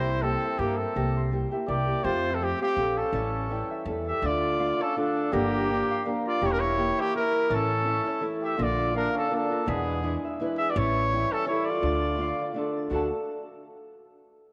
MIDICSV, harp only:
0, 0, Header, 1, 2, 480
1, 0, Start_track
1, 0, Tempo, 363857
1, 1257, Time_signature, 3, 2, 24, 8
1, 11820, Tempo, 359066
1, 19263, End_track
2, 0, Start_track
2, 0, Title_t, "Harp"
2, 0, Program_c, 0, 46
2, 0, Note_on_c, 0, 70, 70
2, 0, Note_on_c, 0, 74, 68
2, 0, Note_on_c, 0, 79, 64
2, 0, Note_on_c, 0, 86, 58
2, 0, Note_on_c, 0, 94, 102
2, 106, Note_on_c, 0, 84, 60
2, 281, Note_off_c, 0, 86, 0
2, 323, Note_off_c, 0, 79, 0
2, 329, Note_on_c, 0, 79, 65
2, 580, Note_on_c, 0, 76, 65
2, 789, Note_off_c, 0, 70, 0
2, 794, Note_on_c, 0, 70, 67
2, 1050, Note_off_c, 0, 94, 0
2, 1055, Note_on_c, 0, 94, 60
2, 1270, Note_off_c, 0, 94, 0
2, 1275, Note_on_c, 0, 94, 102
2, 1540, Note_off_c, 0, 84, 0
2, 1545, Note_on_c, 0, 84, 67
2, 1562, Note_off_c, 0, 74, 0
2, 1758, Note_off_c, 0, 79, 0
2, 1763, Note_on_c, 0, 79, 73
2, 2012, Note_off_c, 0, 76, 0
2, 2017, Note_on_c, 0, 76, 72
2, 2217, Note_off_c, 0, 70, 0
2, 2222, Note_on_c, 0, 70, 71
2, 2480, Note_off_c, 0, 94, 0
2, 2485, Note_on_c, 0, 94, 72
2, 2709, Note_on_c, 0, 93, 112
2, 2788, Note_off_c, 0, 70, 0
2, 2788, Note_off_c, 0, 94, 0
2, 2956, Note_off_c, 0, 84, 0
2, 2961, Note_on_c, 0, 84, 74
2, 3180, Note_off_c, 0, 79, 0
2, 3185, Note_on_c, 0, 79, 78
2, 3457, Note_on_c, 0, 77, 71
2, 3536, Note_off_c, 0, 76, 0
2, 3678, Note_on_c, 0, 69, 74
2, 3918, Note_off_c, 0, 93, 0
2, 3924, Note_on_c, 0, 93, 60
2, 4132, Note_off_c, 0, 93, 0
2, 4137, Note_on_c, 0, 93, 116
2, 4416, Note_on_c, 0, 85, 61
2, 4495, Note_off_c, 0, 84, 0
2, 4627, Note_off_c, 0, 79, 0
2, 4632, Note_on_c, 0, 79, 73
2, 4892, Note_on_c, 0, 76, 68
2, 4971, Note_off_c, 0, 77, 0
2, 5101, Note_off_c, 0, 69, 0
2, 5106, Note_on_c, 0, 69, 71
2, 5347, Note_off_c, 0, 93, 0
2, 5352, Note_on_c, 0, 93, 64
2, 5568, Note_off_c, 0, 93, 0
2, 5573, Note_on_c, 0, 93, 99
2, 5918, Note_off_c, 0, 85, 0
2, 6065, Note_on_c, 0, 77, 74
2, 6144, Note_off_c, 0, 76, 0
2, 6337, Note_on_c, 0, 74, 76
2, 6556, Note_off_c, 0, 69, 0
2, 6562, Note_on_c, 0, 69, 66
2, 6681, Note_off_c, 0, 79, 0
2, 6811, Note_off_c, 0, 93, 0
2, 6816, Note_on_c, 0, 93, 63
2, 7034, Note_on_c, 0, 94, 123
2, 7113, Note_off_c, 0, 69, 0
2, 7113, Note_off_c, 0, 93, 0
2, 7302, Note_on_c, 0, 86, 65
2, 7532, Note_on_c, 0, 79, 70
2, 7785, Note_off_c, 0, 77, 0
2, 7790, Note_on_c, 0, 77, 71
2, 8001, Note_on_c, 0, 70, 83
2, 8248, Note_off_c, 0, 94, 0
2, 8253, Note_on_c, 0, 94, 74
2, 8468, Note_off_c, 0, 94, 0
2, 8473, Note_on_c, 0, 94, 123
2, 8737, Note_on_c, 0, 88, 63
2, 8773, Note_off_c, 0, 74, 0
2, 8816, Note_off_c, 0, 77, 0
2, 8909, Note_off_c, 0, 86, 0
2, 8941, Note_off_c, 0, 79, 0
2, 8946, Note_on_c, 0, 79, 82
2, 9207, Note_on_c, 0, 76, 78
2, 9421, Note_off_c, 0, 70, 0
2, 9427, Note_on_c, 0, 70, 83
2, 9677, Note_off_c, 0, 94, 0
2, 9683, Note_on_c, 0, 94, 86
2, 9894, Note_on_c, 0, 93, 119
2, 9973, Note_off_c, 0, 70, 0
2, 9973, Note_off_c, 0, 94, 0
2, 10152, Note_on_c, 0, 85, 73
2, 10237, Note_off_c, 0, 88, 0
2, 10373, Note_off_c, 0, 76, 0
2, 10378, Note_on_c, 0, 76, 80
2, 10645, Note_on_c, 0, 73, 71
2, 10842, Note_on_c, 0, 69, 65
2, 10995, Note_off_c, 0, 79, 0
2, 11109, Note_off_c, 0, 93, 0
2, 11114, Note_on_c, 0, 93, 73
2, 11330, Note_on_c, 0, 94, 93
2, 11409, Note_off_c, 0, 69, 0
2, 11409, Note_off_c, 0, 93, 0
2, 11595, Note_on_c, 0, 86, 75
2, 11674, Note_off_c, 0, 73, 0
2, 11674, Note_off_c, 0, 85, 0
2, 11815, Note_on_c, 0, 77, 74
2, 11896, Note_off_c, 0, 76, 0
2, 12092, Note_on_c, 0, 74, 85
2, 12293, Note_on_c, 0, 70, 68
2, 12566, Note_off_c, 0, 94, 0
2, 12572, Note_on_c, 0, 94, 71
2, 12789, Note_on_c, 0, 95, 106
2, 12869, Note_off_c, 0, 70, 0
2, 12869, Note_off_c, 0, 94, 0
2, 13062, Note_off_c, 0, 86, 0
2, 13068, Note_on_c, 0, 86, 83
2, 13286, Note_on_c, 0, 80, 77
2, 13538, Note_on_c, 0, 76, 72
2, 13619, Note_off_c, 0, 77, 0
2, 13764, Note_on_c, 0, 71, 78
2, 14019, Note_off_c, 0, 95, 0
2, 14024, Note_on_c, 0, 95, 73
2, 14241, Note_on_c, 0, 93, 113
2, 14321, Note_off_c, 0, 80, 0
2, 14512, Note_on_c, 0, 85, 72
2, 14592, Note_off_c, 0, 74, 0
2, 14592, Note_off_c, 0, 86, 0
2, 14729, Note_on_c, 0, 79, 81
2, 14986, Note_off_c, 0, 76, 0
2, 14991, Note_on_c, 0, 76, 74
2, 15216, Note_on_c, 0, 69, 74
2, 15428, Note_off_c, 0, 95, 0
2, 15475, Note_off_c, 0, 93, 0
2, 15480, Note_on_c, 0, 93, 71
2, 15679, Note_off_c, 0, 93, 0
2, 15684, Note_on_c, 0, 93, 107
2, 15918, Note_off_c, 0, 93, 0
2, 15943, Note_on_c, 0, 86, 71
2, 16023, Note_off_c, 0, 85, 0
2, 16138, Note_off_c, 0, 86, 0
2, 16165, Note_on_c, 0, 77, 81
2, 16245, Note_off_c, 0, 76, 0
2, 16398, Note_off_c, 0, 77, 0
2, 16436, Note_on_c, 0, 74, 79
2, 16503, Note_off_c, 0, 71, 0
2, 16627, Note_off_c, 0, 74, 0
2, 16642, Note_off_c, 0, 69, 0
2, 16648, Note_on_c, 0, 69, 72
2, 16805, Note_off_c, 0, 79, 0
2, 16882, Note_off_c, 0, 69, 0
2, 16910, Note_on_c, 0, 93, 64
2, 17090, Note_on_c, 0, 66, 93
2, 17105, Note_off_c, 0, 93, 0
2, 17123, Note_on_c, 0, 74, 73
2, 17125, Note_on_c, 0, 69, 87
2, 17148, Note_on_c, 0, 81, 102
2, 17356, Note_off_c, 0, 81, 0
2, 17358, Note_off_c, 0, 66, 0
2, 17359, Note_off_c, 0, 74, 0
2, 17360, Note_off_c, 0, 69, 0
2, 19263, End_track
0, 0, End_of_file